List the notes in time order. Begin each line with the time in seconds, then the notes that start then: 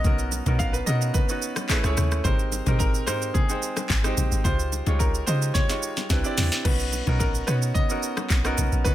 Already playing: B3 C#4 D#4 F#4 G#4 A#4 C#5 D#5
0.04 B1 B3 C#4 D#4 F#4 A#4, kick, low conga, shaker
0.19 shaker
0.32 low bongo, shaker
0.46 B1 B3 C#4 D#4 F#4 A#4, mid tom, low bongo, shaker
0.59 F5, kick, high bongo, shaker
0.73 B4, shaker
0.86 B2 B3 C#4 D#4 F#4 A#4 D#5, high bongo, shaker
1.02 shaker
1.14 B4, kick, low conga, shaker
1.28 B3 C#4 D#4 F#4 B4, shaker
1.42 shaker
1.56 cross-stick, low bongo, shaker
1.69 A3 C#4 E4 G#4 B4, kick, clap, high bongo, shaker
1.83 C#2 A3 C#4 E4 G#4 C#5, cross-stick, shaker
1.97 D#2, cross-stick, low bongo, low conga, shaker
2.12 cross-stick, shaker
2.24 G#1 G#3 C4 D#4 G4 A#4 C5, kick, low conga, shaker
2.39 shaker
2.52 low bongo, shaker
2.66 G#1 G#3 C4 D#4 G4 A#4, mid tom, low bongo, shaker
2.79 A#4, kick, high bongo, shaker
2.94 shaker
3.06 G#2 G#3 C4 D#4 G4 A#4 C5, cross-stick, high bongo, shaker
3.22 shaker
3.34 G#4, kick, low conga, shaker
3.48 G#3 C4 D#4 C5 G5, shaker
3.62 shaker
3.77 cross-stick, low bongo, shaker
3.90 G#1, kick, clap, high bongo, shaker
4.03 G#3 C4 D#4 G4 C5, cross-stick, shaker
4.17 A#1, low bongo, low conga, shaker
4.32 G#1, shaker
4.44 C#2 G#3 D#4 F4 G4 C5, kick, low conga, shaker
4.59 shaker
4.72 low bongo, shaker
4.86 C#2 G#3 D#4 F4 G4 C#5, low bongo, shaker
4.99 A#4, kick, high bongo, shaker
5.14 shaker
5.26 C#3 G#3 D#4 F4 G4 C5 D#5, high bongo, shaker
5.42 shaker
5.54 C#5, kick, snare, low conga, shaker
5.68 G#3 D#4 F4 G4 C#5, snare, shaker
5.83 shaker
5.97 snare, low bongo, shaker
6.09 C2 C4 D4 E4 G4 B4, kick, snare, high bongo, shaker
6.23 C4 D4 E4 G4 D5, shaker
6.38 E2, snare, open hi-hat, low bongo, low conga, shaker
6.52 snare, shaker
6.64 B1 B3 C#4 D#4 F#4 B4, kick, crash, low conga
6.79 shaker
6.93 low bongo, shaker
7.06 B1 B3 C#4 D#4 F#4 A#4, mid tom, low bongo, shaker
7.19 A#4, kick, high bongo, shaker
7.35 shaker
7.47 B2 B3 C#4 D#4 F#4 B4 C#5, cross-stick, high bongo, shaker
7.62 shaker
7.74 D#5, kick, low conga, shaker
7.89 B3 C#4 D#4 F#4 A#4, shaker
8.03 shaker
8.17 cross-stick, low bongo, shaker
8.30 B1, kick, clap, high bongo, shaker
8.44 B3 C#4 D#4 F#4 A#4, cross-stick, shaker
8.58 B1, low bongo, low conga, shaker
8.72 A#1, shaker
8.84 B3 C#4 D#4 F#4 B4, kick, low conga, shaker